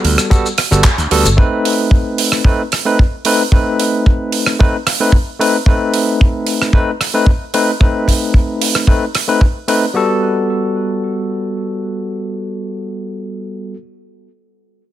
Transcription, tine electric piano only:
0.00 0.27 G3 medium
0.00 0.28 B3 medium
0.00 0.28 F#4 medium
0.00 0.28 A4 medium
0.30 0.47 G3 medium
0.30 0.47 B3 medium
0.30 0.47 F#4 medium
0.30 0.47 A4 medium
0.71 0.87 G3 medium
0.71 0.87 B3 medium
0.71 0.87 F#4 medium
0.71 0.87 A4 medium
1.11 1.27 G3 medium
1.11 1.27 B3 medium
1.11 1.27 F#4 medium
1.11 1.28 A4 loud
1.37 2.41 A3 medium
1.37 2.42 C4 medium
1.37 2.42 D#4 medium
1.37 2.42 B4 medium
2.45 2.61 A3 medium
2.45 2.61 C4 medium
2.45 2.61 D#4 medium
2.45 2.61 B4 medium
2.85 3.01 A3 medium
2.85 3.01 C4 medium
2.85 3.01 D#4 medium
2.85 3.02 B4 medium
3.25 3.41 A3 medium
3.25 3.42 C4 medium
3.25 3.42 D#4 medium
3.25 3.42 B4 medium
3.52 4.56 A3 medium
3.52 4.56 C4 medium
3.52 4.57 D#4 medium
3.52 4.57 B4 medium
4.59 4.75 A3 medium
4.59 4.75 C4 medium
4.59 4.76 D#4 medium
4.59 4.76 B4 medium
5.00 5.15 A3 medium
5.00 5.16 C4 medium
5.00 5.16 D#4 medium
5.00 5.16 B4 medium
5.39 5.56 A3 medium
5.39 5.56 C4 medium
5.39 5.56 D#4 medium
5.39 5.56 B4 medium
5.66 6.70 A3 medium
5.66 6.71 C4 medium
5.66 6.71 D#4 medium
5.66 6.71 B4 medium
6.73 6.90 A3 medium
6.73 6.90 C4 medium
6.73 6.90 D#4 medium
6.73 6.90 B4 medium
7.14 7.29 A3 medium
7.14 7.30 C4 medium
7.14 7.30 D#4 medium
7.14 7.30 B4 medium
7.54 7.70 A3 medium
7.54 7.70 C4 medium
7.54 7.70 D#4 medium
7.54 7.70 B4 medium
7.80 8.84 A3 medium
7.80 8.85 C4 medium
7.80 8.85 D#4 medium
7.80 8.86 B4 medium
8.88 9.04 A3 medium
8.88 9.04 C4 medium
8.88 9.04 D#4 medium
8.88 9.04 B4 medium
9.28 9.44 A3 medium
9.28 9.44 C4 medium
9.28 9.44 D#4 medium
9.28 9.44 B4 medium
9.68 9.84 A3 medium
9.68 9.84 C4 medium
9.68 9.84 D#4 medium
9.68 9.85 B4 medium
9.94 13.73 G3 medium
9.94 13.74 B3 medium
9.94 13.75 F#4 medium
9.94 13.76 A4 medium

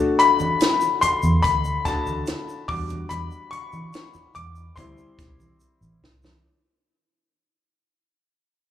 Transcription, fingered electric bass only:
0.00 0.28 B1 loud
0.40 muted fingered electric bass stroke soft
1.03 muted fingered electric bass stroke soft
1.23 1.40 E2 medium
1.44 1.78 D2 medium
2.07 2.23 D2 medium
2.69 3.02 E2 medium
3.11 3.28 E2 loud
3.52 muted fingered electric bass stroke medium
3.73 3.90 E3 medium
4.15 muted fingered electric bass stroke soft
4.36 4.69 E2 loud
4.77 4.94 D2 medium
5.19 5.52 B1 medium
5.81 5.98 A1 medium
6.02 6.36 C2 medium

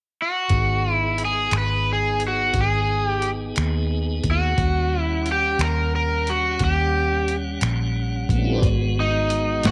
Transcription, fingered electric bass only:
0.50 1.48 G#1 medium
1.52 2.50 G#1 medium
2.53 3.52 G#1 medium
3.57 4.21 D#2 medium
4.24 4.55 D#2 medium
4.58 5.55 D#2 medium
5.59 6.57 D#2 medium
6.61 7.58 D#2 medium
7.62 8.26 A#1 medium
8.29 8.60 A#1 medium
8.62 9.60 G#1 medium
9.64 9.71 G#1 medium

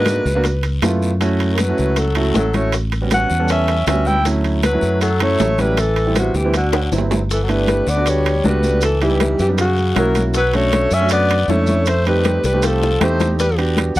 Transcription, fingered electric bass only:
0.00 0.20 G#2 medium
0.25 0.79 C#2 medium
0.82 1.72 F#2 medium
1.79 2.32 C#2 medium
2.36 3.25 A1 medium
3.31 3.84 E2 medium
3.87 4.76 D2 medium
4.82 5.36 F#2 medium
5.40 6.29 A1 medium
6.34 6.88 D2 medium
6.92 7.81 G1 medium
7.87 8.40 D2 medium
8.45 9.34 C#2 medium
9.39 9.93 F#2 loud
9.96 10.86 B1 medium
10.91 11.45 F#2 medium
11.48 12.38 F2 medium
12.44 12.97 C2 medium
13.01 13.90 E2 medium
13.96 14.00 E2 medium

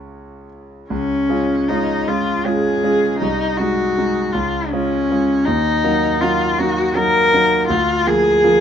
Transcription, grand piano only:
0.00 0.87 C#2 soft
0.00 0.87 G#3 soft
0.00 0.87 C#4 soft
0.00 0.87 F4 soft
0.00 0.45 C#5 medium
0.00 0.49 C#6 medium
0.90 1.29 C#2 soft
1.29 1.66 G#3 soft
1.29 1.65 C#4 soft
1.29 1.66 F4 soft
1.70 2.05 G#3 soft
1.70 2.05 C#4 soft
1.70 2.05 F4 soft
2.08 2.42 G#3 soft
2.08 2.43 C#4 soft
2.08 2.43 F4 soft
2.45 2.80 G#3 soft
2.45 2.80 C#4 soft
2.45 2.80 F4 soft
2.83 3.18 G#3 soft
2.83 3.18 C#4 soft
2.83 3.18 F4 soft
3.22 3.58 C2 medium
3.60 3.93 G#3 soft
3.60 3.93 D#4 soft
3.97 4.31 G#3 soft
3.97 4.31 D#4 soft
4.34 4.71 C#2 medium
4.73 5.06 G#3 soft
4.73 5.06 C#4 soft
4.73 5.06 F4 soft
5.11 5.44 G#3 soft
5.11 5.44 C#4 soft
5.11 5.44 F4 soft
5.48 5.83 D#2 soft
5.84 6.18 F#3 soft
5.84 6.18 A#3 soft
5.84 6.18 D#4 soft
6.21 6.55 F#3 soft
6.21 6.55 A#3 soft
6.21 6.56 D#4 soft
6.59 6.92 F#3 soft
6.59 6.93 A#3 soft
6.59 6.93 D#4 soft
6.95 7.29 F#3 soft
6.95 7.29 A#3 soft
6.95 7.29 D#4 soft
7.34 7.67 F#3 soft
7.34 7.67 A#3 soft
7.34 7.67 D#4 soft
7.70 8.06 D2 medium
8.07 8.40 F3 soft
8.07 8.40 A#3 soft
8.44 8.60 F3 soft
8.44 8.60 A#3 medium

